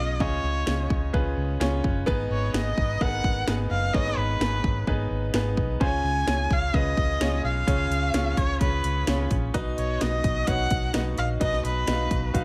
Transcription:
Already playing: fingered electric bass B1, upright piano C#3 C#4 F4 G#4 C#5 D#5
0.00 erhu D#5
0.20 fingered electric bass C#2, upright piano C#3 C#4 F4 G#4 D#5, erhu C#5, kick
0.43 fingered electric bass C#2
0.66 fingered electric bass C#2, upright piano C#4 F4 G#4 C#5, snare
0.90 fingered electric bass C#2, kick
1.13 fingered electric bass C#2, upright piano C#4 F4 G#4 B4, kick
1.37 fingered electric bass C#2
1.60 fingered electric bass C#2, upright piano C#4 F4 G#4 C#5, snare
1.84 fingered electric bass F#1, kick
2.06 fingered electric bass G#1, upright piano G#2 B3 D#4 G#4 B4, kick
2.30 fingered electric bass G#1, erhu C#5
2.53 fingered electric bass G#1, upright piano B3 D#4 G#4 B4, erhu D#5, snare
2.78 fingered electric bass G#1, kick
3.00 fingered electric bass G#1, upright piano B3 D#4 G#4 A#4, erhu F#5, kick
3.07 upright piano B4
3.24 fingered electric bass G#1, kick
3.47 fingered electric bass G#1, upright piano B3 D#4 G#4 B4, snare
3.70 fingered electric bass F#1, erhu F5
3.93 fingered electric bass G#1, upright piano G#2 B3 D#4 G#4 C#5, erhu D#5, kick
4.06 snare
4.17 fingered electric bass G#1, erhu B4
4.40 fingered electric bass G#1, upright piano B3 D#4 G#4 B4, snare
4.64 fingered electric bass G#1, kick
4.87 fingered electric bass G#1, upright piano B3 D#4 G#4 B4, kick
5.10 fingered electric bass G#1
5.34 fingered electric bass G#1, upright piano B3 D#4 G#4 B4, snare
5.57 fingered electric bass B1, kick
5.80 fingered electric bass C#2, upright piano C#3 C#4 F4 G#4 C5, erhu G#5, kick
5.87 upright piano C#5
6.04 fingered electric bass C#2
6.27 fingered electric bass C#2, upright piano C#4 F4 G#4 C#5, snare
6.50 fingered electric bass C#2, erhu F5, kick
6.74 fingered electric bass C#2, upright piano C#4 F4 G#4 B4, erhu D#5, kick
6.97 fingered electric bass C#2, kick
7.20 fingered electric bass C#2, upright piano C#4 F4 G#4 C#5, snare
7.44 fingered electric bass B1, erhu F5
7.67 fingered electric bass C#2, upright piano C#3 C#4 F4 G#4 C#5, kick, closed hi-hat
7.90 fingered electric bass C#2, closed hi-hat
8.13 fingered electric bass C#2, upright piano C#4 F4 G#4 C#5, snare, closed hi-hat
8.37 fingered electric bass C#2, erhu C#5, kick, closed hi-hat
8.61 fingered electric bass C#2, upright piano C#4 F4 G#4 C#5, erhu B4, kick, closed hi-hat
8.84 fingered electric bass C#2, closed hi-hat
9.07 fingered electric bass C#2, upright piano C#4 F4 G#4 C#5, snare, closed hi-hat
9.31 fingered electric bass A#1, kick, closed hi-hat
9.54 fingered electric bass B1, upright piano B2 D#4 F#4 B4 D#5, kick, closed hi-hat
9.78 fingered electric bass B1, erhu C#5, closed hi-hat
10.01 fingered electric bass B1, upright piano D#4 F#4 B4 D#5, erhu D#5, snare, closed hi-hat
10.24 fingered electric bass B1, kick, closed hi-hat
10.47 fingered electric bass B1, upright piano D#4 F#4 B4 C#5, erhu F#5, kick, closed hi-hat
10.71 fingered electric bass B1, kick, closed hi-hat
10.93 fingered electric bass B1, upright piano D#4 F#4 B4 D#5, snare, closed hi-hat
11.18 fingered electric bass A#1, erhu F5, closed hi-hat
11.40 fingered electric bass B1, upright piano B2 D#4 F#4 B4 D#5, erhu D#5, kick, closed hi-hat
11.53 snare
11.64 fingered electric bass B1, erhu B4, closed hi-hat
11.87 fingered electric bass B1, upright piano D#4 F#4 B4 D#5, snare, closed hi-hat
11.93 upright piano F5
12.11 fingered electric bass B1, kick, closed hi-hat
12.34 fingered electric bass B1, upright piano D#4 F#4 B4 F5, kick, closed hi-hat

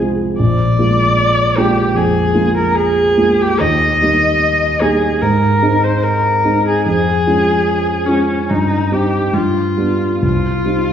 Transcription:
Already playing: grand piano C2
0.00 grand piano G#3 C4 F4
0.39 grand piano A#1, viola D5
0.79 grand piano G#3 A#3 F4
1.57 grand piano G#3 A#3 F4, viola G4
1.95 grand piano F2, viola G#4
2.34 grand piano G#3 A#3 F4
2.57 viola A#4
2.75 viola G#4
3.17 grand piano G#3 A#3 F4
3.42 viola G4
3.60 grand piano D#2, viola D#5
4.02 grand piano G3 A#3 D#4
4.82 grand piano G3 A#3 D#4, viola G#4
5.22 grand piano G#2, viola A#4
5.62 grand piano G#3 C4 D#4
5.84 viola C5
6.04 viola A#4
6.45 grand piano G#3 C4 D#4
6.68 viola G#4
6.86 grand piano F2, viola G#4
7.27 grand piano G#3 C#4 F4
8.06 grand piano G#3 C#4 F4, viola C#4
8.50 grand piano G2, viola D#4
8.92 grand piano G3 C4 D#4, viola G4
9.33 grand piano G2, viola F4
9.77 grand piano G3 B3 D4
10.22 grand piano C2, viola F4
10.65 grand piano G3 C4 D#4

